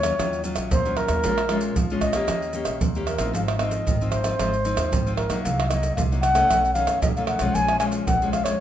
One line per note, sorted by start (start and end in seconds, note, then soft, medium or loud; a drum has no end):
0.00 0.12 D#2 loud
0.00 0.17 A#2 medium
0.00 0.14 F#3 medium
0.00 0.14 C#4 medium
0.00 0.14 F4 medium
0.00 0.41 C#5 medium
0.00 pandeiro medium
0.00 tamborim medium
0.00 maracas medium
0.18 0.53 D#2 medium
0.18 0.69 D#3 medium
0.18 0.41 F#3 medium
0.18 0.41 C#4 soft
0.18 0.41 F4 medium
0.18 pandeiro medium
0.18 tamborim medium
0.18 maracas medium
0.18 surdo medium
0.33 pandeiro soft
0.33 maracas soft
0.44 0.70 F#3 soft
0.44 0.70 C#4 soft
0.44 0.70 F4 medium
0.44 pandeiro medium
0.44 maracas medium
0.56 0.69 A#1 medium
0.56 pandeiro medium
0.56 tamborim medium
0.56 maracas medium
0.71 1.06 D#2 medium
0.71 1.21 A#2 medium
0.71 0.99 C5 loud
0.71 pandeiro medium
0.71 maracas medium
0.71 surdo medium
0.85 1.20 F#3 medium
0.85 1.21 C#4 medium
0.85 1.21 F4 medium
0.85 pandeiro soft
0.85 maracas soft
0.97 1.76 A#4 loud
0.97 pandeiro medium
0.97 tamborim medium
1.08 1.21 D#2 medium
1.08 pandeiro medium
1.08 tamborim medium
1.08 maracas medium
1.24 1.69 A#1 medium
1.24 1.74 A#2 medium
1.24 1.40 G#3 medium
1.24 1.40 C#4 medium
1.24 1.40 F4 medium
1.24 pandeiro medium
1.24 maracas medium
1.24 surdo medium
1.38 pandeiro soft
1.38 tamborim medium
1.38 maracas soft
1.49 1.75 G#3 medium
1.49 1.75 C#4 medium
1.49 1.76 F4 medium
1.49 pandeiro medium
1.49 tamborim medium
1.61 pandeiro medium
1.61 maracas medium
1.76 2.22 A#1 loud
1.76 2.27 F3 medium
1.76 pandeiro medium
1.76 maracas medium
1.76 surdo loud
1.90 2.13 G#3 medium
1.90 2.13 C#4 medium
1.90 2.13 F4 medium
1.90 pandeiro soft
1.90 maracas soft
2.01 2.77 D#5 loud
2.01 pandeiro medium
2.01 tamborim medium
2.01 maracas medium
2.01 surdo medium
2.13 2.50 A#3 medium
2.13 2.51 C#4 medium
2.13 2.51 G4 medium
2.13 pandeiro medium
2.13 tamborim medium
2.13 maracas medium
2.28 2.63 D#2 medium
2.28 2.79 D#3 medium
2.28 pandeiro medium
2.28 tamborim medium
2.28 maracas medium
2.28 surdo medium
2.42 pandeiro soft
2.42 maracas soft
2.53 2.80 A#3 soft
2.53 2.80 C#4 medium
2.53 2.80 G4 medium
2.53 pandeiro medium
2.53 maracas medium
2.65 2.79 A#1 medium
2.65 pandeiro medium
2.65 tamborim medium
2.65 maracas medium
2.81 3.15 D#2 medium
2.81 3.32 A#2 medium
2.81 pandeiro medium
2.81 maracas medium
2.81 surdo medium
2.95 3.18 A#3 medium
2.95 3.18 C#4 soft
2.95 3.18 G4 medium
2.95 pandeiro soft
2.95 maracas soft
3.07 3.32 A#4 medium
3.07 pandeiro medium
3.07 tamborim medium
3.07 maracas medium
3.18 3.31 A1 medium
3.18 3.55 F3 medium
3.18 3.55 C4 medium
3.18 3.56 D#4 medium
3.18 pandeiro medium
3.18 tamborim medium
3.18 maracas medium
3.33 3.79 G#1 medium
3.33 3.84 G#2 medium
3.33 3.41 F5 medium
3.33 pandeiro medium
3.33 maracas medium
3.33 surdo soft
3.48 pandeiro soft
3.48 tamborim medium
3.48 maracas soft
3.59 3.96 F3 medium
3.59 3.96 C4 medium
3.59 3.96 D#4 medium
3.59 4.09 D#5 medium
3.59 pandeiro medium
3.59 tamborim medium
3.71 pandeiro medium
3.71 maracas medium
3.87 4.31 G#1 medium
3.87 4.37 D#3 medium
3.87 pandeiro medium
3.87 maracas medium
3.87 surdo medium
4.01 4.23 F3 medium
4.01 4.23 C4 medium
4.01 4.23 D#4 medium
4.01 pandeiro soft
4.01 maracas soft
4.12 5.14 C5 loud
4.12 pandeiro medium
4.12 tamborim medium
4.12 maracas medium
4.24 4.34 F3 medium
4.24 4.34 C4 medium
4.24 4.35 D#4 medium
4.24 pandeiro medium
4.24 tamborim medium
4.24 maracas medium
4.39 4.73 G#1 medium
4.39 4.89 G#2 medium
4.39 4.55 F3 medium
4.39 4.55 C4 medium
4.39 4.55 D#4 medium
4.39 pandeiro medium
4.39 tamborim medium
4.39 maracas medium
4.39 surdo medium
4.53 pandeiro soft
4.53 maracas soft
4.65 4.90 F3 soft
4.65 4.90 C4 medium
4.65 4.90 D#4 medium
4.65 pandeiro medium
4.65 maracas medium
4.77 4.89 D#2 medium
4.77 pandeiro medium
4.77 tamborim medium
4.77 maracas medium
4.92 5.25 G#1 medium
4.92 5.42 D#3 medium
4.92 pandeiro medium
4.92 maracas medium
4.92 surdo medium
5.06 5.28 F3 medium
5.06 5.28 C4 medium
5.06 5.28 D#4 medium
5.06 pandeiro soft
5.06 maracas soft
5.16 5.42 A#4 medium
5.16 pandeiro medium
5.16 tamborim medium
5.29 5.42 A#1 medium
5.29 5.66 F#3 medium
5.29 5.66 A#3 medium
5.29 5.66 D#4 medium
5.29 pandeiro medium
5.29 tamborim medium
5.29 maracas medium
5.43 5.90 C2 loud
5.43 5.95 C3 medium
5.43 5.71 F5 medium
5.43 pandeiro medium
5.43 maracas medium
5.43 surdo medium
5.60 pandeiro soft
5.60 tamborim medium
5.60 maracas soft
5.69 5.95 F#3 medium
5.69 5.96 A#3 medium
5.69 5.96 D#4 medium
5.69 5.95 D#5 medium
5.69 pandeiro medium
5.69 tamborim medium
5.69 maracas medium
5.83 pandeiro medium
5.83 maracas medium
5.96 6.42 C2 loud
5.96 6.47 C3 medium
5.96 6.02 F5 medium
5.96 pandeiro medium
5.96 maracas medium
5.96 surdo medium
6.12 6.33 F#3 medium
6.12 6.33 A#3 medium
6.12 6.34 D#4 medium
6.12 pandeiro soft
6.12 maracas soft
6.21 6.71 F#5 loud
6.21 pandeiro soft
6.21 tamborim medium
6.21 maracas medium
6.34 6.71 D#3 medium
6.34 6.71 A3 medium
6.34 6.71 C#4 medium
6.34 pandeiro medium
6.34 tamborim medium
6.34 maracas medium
6.50 6.84 B1 medium
6.50 7.00 B2 medium
6.50 pandeiro medium
6.50 tamborim medium
6.50 maracas medium
6.50 surdo medium
6.65 pandeiro soft
6.65 maracas soft
6.74 7.11 D#3 medium
6.74 7.11 A3 medium
6.74 7.11 C#4 medium
6.74 6.99 F5 loud
6.74 pandeiro medium
6.74 maracas medium
6.87 6.99 F#2 medium
6.87 pandeiro medium
6.87 tamborim medium
6.87 maracas medium
7.02 7.36 B1 medium
7.02 7.53 F#2 medium
7.02 7.08 D#5 medium
7.02 pandeiro medium
7.02 maracas medium
7.02 surdo loud
7.16 7.38 D#3 medium
7.16 7.39 A3 medium
7.16 7.39 C#4 medium
7.16 7.27 F5 medium
7.16 pandeiro soft
7.16 maracas soft
7.27 7.56 F#5 medium
7.27 pandeiro medium
7.27 tamborim medium
7.39 7.52 B1 medium
7.39 7.76 F3 medium
7.39 7.76 G#3 medium
7.39 7.77 C#4 medium
7.39 pandeiro medium
7.39 tamborim medium
7.39 maracas medium
7.55 8.00 A#1 medium
7.55 8.05 A#2 medium
7.55 7.79 G#5 loud
7.55 pandeiro medium
7.55 maracas medium
7.55 surdo medium
7.68 pandeiro soft
7.68 tamborim medium
7.68 maracas soft
7.79 8.05 F3 medium
7.79 8.06 G#3 medium
7.79 8.06 C#4 medium
7.79 7.86 G#5 medium
7.79 pandeiro medium
7.79 tamborim medium
7.79 maracas medium
7.92 pandeiro medium
7.92 maracas medium
8.07 8.52 A#1 loud
8.07 8.58 F2 medium
8.07 8.32 F#5 medium
8.07 pandeiro medium
8.07 maracas medium
8.07 surdo medium
8.22 8.43 F3 medium
8.22 8.43 G#3 medium
8.22 8.44 C#4 medium
8.22 pandeiro soft
8.22 maracas soft
8.33 8.46 F5 loud
8.33 pandeiro medium
8.33 tamborim medium
8.33 maracas medium
8.44 8.55 F3 medium
8.44 8.55 G#3 soft
8.44 8.55 C#4 medium
8.44 8.60 C#5 medium
8.44 pandeiro medium
8.44 tamborim medium
8.44 maracas medium